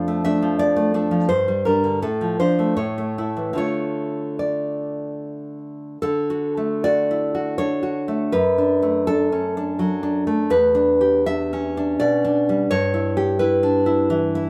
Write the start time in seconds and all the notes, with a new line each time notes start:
Already playing: F2 F3 D4 F5
0.08 A3
0.25 A3 D4 E5
0.42 F3
0.59 D5
0.76 A3
0.94 A3 D4
1.11 F3
1.29 G2 C5
1.48 G3
1.65 G3 D4 A#4
1.84 D3
2.02 A2 A4
2.21 F3
2.40 F3 D4 C5
2.59 A3
2.77 A2 C#5
2.98 A3
3.18 A3 E4
3.37 E3
3.53 D3 A3 F4
3.58 C#5
4.39 D5
6.02 D3 A4
6.30 F#4
6.57 A3
6.84 F#4 D5
7.11 E4
7.35 F#4
7.58 D4 C#5
7.83 F#4
8.08 A3
8.32 F#2 B4
8.58 D4
8.82 A3
9.07 D4 A4
9.32 C#4
9.57 D4
9.79 F#3
10.03 D4
10.27 A3
10.50 E2 B4
10.75 D4
11.01 G4
11.26 D4 E5
11.53 C#4
11.77 D4
12.00 B2 D5
12.25 D4
12.49 G3
12.71 G2 C#5
12.94 E4
13.17 G4
13.39 E4 B4
13.63 D4
13.86 E4
14.10 E3
14.35 E4